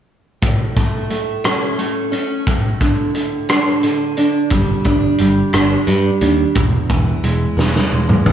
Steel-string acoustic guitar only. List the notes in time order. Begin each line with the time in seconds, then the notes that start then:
0.42 A2
0.77 A3
1.10 A3
1.44 C#4
1.78 A3
2.12 C#4
2.47 A2
2.81 D3
3.15 D3
3.49 D4
3.83 D3
4.18 D4
4.52 G3
4.85 D4
5.20 G3
5.54 D4
5.88 G3
6.22 D4
6.56 E2
6.89 E3
7.23 G#3
7.58 B3
7.92 G#3
8.26 B3